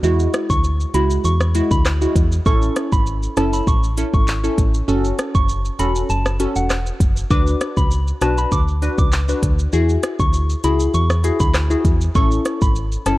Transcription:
0.03 fm bass E2, synth pluck G#3 E4 F#4, shaker
0.20 shaker
0.34 cross-stick, closed hi-hat, shaker
0.50 fm bass D2, synth bell C#6, kick, shaker
0.64 shaker
0.80 shaker
0.94 fm bass C#2, synth pluck G#3 E4 F#4, synth bell B5, closed hi-hat, shaker
1.10 shaker
1.25 fm bass E2, synth bell C#6, shaker
1.41 cross-stick, shaker
1.55 synth pluck G#3 E4 F#4, closed hi-hat, shaker
1.71 fm bass D2, synth bell B5, kick, shaker
1.85 cross-stick, clap, shaker
2.01 synth pluck G#3 E4 F#4, shaker
2.16 fm bass E2, kick, closed hi-hat, shaker
2.32 shaker
2.46 fm bass A1, synth pluck C#4 E4 A4, synth bell C#6, kick, shaker
2.62 shaker
2.76 cross-stick, closed hi-hat, shaker
2.92 fm bass G#1, synth bell B5, kick, shaker
3.06 shaker
3.23 shaker
3.37 fm bass F#1, synth pluck C#4 E4 A4, synth bell A5, cross-stick, closed hi-hat, shaker
3.53 synth bell B5, shaker
3.67 fm bass A1, synth bell C#6, kick, shaker
3.83 shaker
3.97 synth pluck C#4 E4 A4, closed hi-hat, shaker
4.13 fm bass G#1, synth bell C#6, kick, shaker
4.27 clap, shaker
4.43 synth pluck C#4 E4 A4, shaker
4.58 fm bass A1, kick, closed hi-hat, shaker
4.74 shaker
4.88 fm bass F#1, synth pluck C#4 F#4 A4, shaker
5.05 shaker
5.19 cross-stick, closed hi-hat, shaker
5.35 fm bass F#1, synth bell C#6, kick, shaker
5.49 shaker
5.65 shaker
5.79 fm bass E1, synth pluck C#4 F#4 A4, synth bell B5, closed hi-hat, shaker
5.95 shaker
6.10 fm bass F#1, synth bell A5, shaker
6.26 cross-stick, shaker
6.40 synth pluck C#4 F#4 A4, closed hi-hat, shaker
6.56 fm bass E1, synth bell F#5, shaker
6.70 cross-stick, clap, shaker
6.87 shaker
7.00 fm bass F#1, kick, closed hi-hat, shaker
7.17 shaker
7.31 fm bass D2, synth pluck D4 F#4 B4, synth bell D6, kick, shaker
7.47 shaker
7.61 cross-stick, closed hi-hat, shaker
7.77 fm bass C#2, synth bell B5, kick, shaker
7.91 shaker
8.08 shaker
8.21 fm bass B1, synth pluck D4 F#4 B4, synth bell A5, cross-stick, closed hi-hat, shaker
8.38 synth bell B5, shaker
8.52 fm bass D2, synth bell D6, kick, shaker
8.68 shaker
8.82 synth pluck D4 F#4 B4, closed hi-hat, shaker
8.98 fm bass C#2, synth bell D6, kick, shaker
9.12 clap, shaker
9.28 synth pluck D4 F#4 B4, shaker
9.43 fm bass D2, kick, closed hi-hat, shaker
9.59 shaker
9.73 fm bass E2, synth pluck E4 F#4 G#4, shaker
9.89 shaker
10.03 cross-stick, closed hi-hat, shaker
10.19 fm bass D2, synth bell C#6, kick, shaker
10.33 shaker
10.49 shaker
10.64 fm bass C#2, synth pluck E4 F#4 G#4, synth bell B5, closed hi-hat, shaker
10.80 shaker
10.94 fm bass E2, synth bell C#6, shaker
11.10 cross-stick, shaker
11.24 synth pluck E4 F#4 G#4, closed hi-hat, shaker
11.40 fm bass D2, synth bell B5, kick, shaker
11.54 cross-stick, clap, shaker
11.71 synth pluck E4 F#4 G#4, shaker
11.85 fm bass E2, kick, closed hi-hat, shaker
12.01 shaker
12.15 fm bass A1, synth pluck C#4 E4 A4, synth bell C#6, kick, shaker
12.31 shaker
12.45 cross-stick, closed hi-hat, shaker
12.62 fm bass G#1, synth bell B5, kick, shaker
12.76 shaker
12.92 shaker
13.06 fm bass F#1, synth pluck C#4 E4 A4, synth bell A5, cross-stick, closed hi-hat, shaker

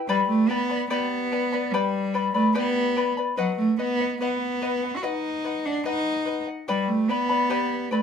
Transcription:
0.08 cello G3, charango G4 B4 D5 G5 B5
0.28 cello A3
0.49 cello B3, charango B4 D5 G5 B5
0.70 charango B4 D5 B5
0.90 cello B3, charango G4 B4 D5 G5 B5
1.32 charango B4 D5 G5 B5
1.52 charango B4 D5 B5
1.72 cello G3, charango G4 B4 D5 G5 B5
2.14 charango B4 D5 G5 B5
2.34 cello A3, charango B4 D5 B5
2.55 cello B3, charango G4 B4 D5 G5 B5
2.96 charango B4 D5 G5 B5
3.17 charango B4 D5 B5
3.37 cello F#3, charango B4 D#5 F#5
3.58 cello A3
3.79 cello B3, charango B4 D#5 F#5
4.00 charango D#5 F#5
4.21 cello B3, charango B4 D#5 F#5
4.62 charango B4 D#5 F#5
4.83 charango D#5 F#5
4.96 cello F#4
5.03 cello D#4, charango B4 D#5 F#5
5.44 charango B4 D#5 F#5
5.65 cello D4, charango D#5 F#5
5.85 cello D#4, charango B4 D#5 F#5
6.26 charango B4 D#5 F#5
6.47 charango D#5 F#5
6.68 cello G3, charango G4 B4 D5 G5 B5
6.88 cello A3
7.08 cello B3, charango B4 D5 G5 B5
7.29 charango B4 D5 B5
7.50 charango G4 B4 D5 G5 B5
7.91 cello A3, charango B4 D5 G5 B5

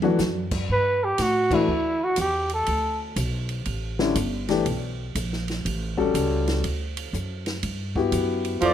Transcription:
Already playing: upright bass E2
0.02 grand piano E3 A3 D4 F#4, high tom
0.18 upright bass F#2, snare, hi-hat pedal
0.51 kick, crash
0.69 upright bass G2, trumpet B4
1.04 trumpet G4
1.18 upright bass A2, trumpet F#4, snare, hi-hat pedal, ride
1.51 grand piano E3 A3 D4 F#4, trumpet E4, kick, crash
1.68 upright bass D2
2.04 trumpet F#4
2.16 upright bass E2, hi-hat pedal, ride
2.20 trumpet G4
2.49 ride
2.54 trumpet A4
2.66 upright bass D2, ride
3.16 upright bass B1, hi-hat pedal, ride
3.49 ride
3.65 upright bass A1, ride
3.99 grand piano D3 G3 C#4 E4, snare
4.15 upright bass G1, hi-hat pedal, ride
4.48 grand piano E3 A3 D4 G4, snare, ride
4.65 upright bass B1, ride
5.15 upright bass A#1, hi-hat pedal, ride
5.33 snare
5.48 snare, ride
5.65 upright bass A1, ride
5.97 grand piano G3 C#4 F#4 A4, kick
6.14 upright bass C#2, hi-hat pedal, ride
6.47 snare, ride
6.64 upright bass D2, ride
6.97 ride
7.13 upright bass F#2, hi-hat pedal
7.46 snare, ride
7.63 upright bass G2, ride
7.96 grand piano B3 E4 F#4 G4, kick
8.12 upright bass F#2, hi-hat pedal, ride
8.45 ride
8.61 upright bass F2, tenor saxophone F3, grand piano F3 B3 E4 A4, trumpet D5, ride

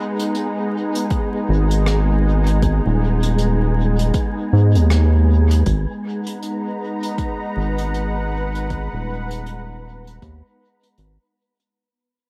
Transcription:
Already playing: analog synth pad G#3 D#4 B4 F#5 A#5, synth texture B3 G#4
0.20 closed hi-hat
0.35 closed hi-hat
0.95 closed hi-hat
1.10 kick, closed hi-hat
1.49 analog synth bass G#1
1.71 closed hi-hat
1.86 cross-stick, closed hi-hat
2.47 closed hi-hat
2.62 kick, closed hi-hat
2.86 analog synth bass D#1
3.23 closed hi-hat
3.38 closed hi-hat
3.99 closed hi-hat
4.14 kick, closed hi-hat
4.53 analog synth bass G#2
4.75 analog synth bass D#2, closed hi-hat
4.90 cross-stick, closed hi-hat
5.51 closed hi-hat
5.66 analog synth bass G#1, analog synth pad G#3, synth texture B3 B4, kick, closed hi-hat
5.91 analog synth pad D#4
5.98 analog synth pad F#5 A#5
6.27 closed hi-hat
6.42 closed hi-hat
6.66 analog synth pad B4
7.03 closed hi-hat
7.18 kick, closed hi-hat
7.57 analog synth bass G#1
7.78 closed hi-hat
7.94 closed hi-hat
8.55 closed hi-hat
8.70 kick, closed hi-hat
8.93 analog synth bass D#1
9.31 closed hi-hat
9.46 closed hi-hat
10.07 closed hi-hat
10.22 analog synth bass D#2, kick, closed hi-hat
10.83 closed hi-hat
10.98 analog synth bass G#1, closed hi-hat
11.60 closed hi-hat

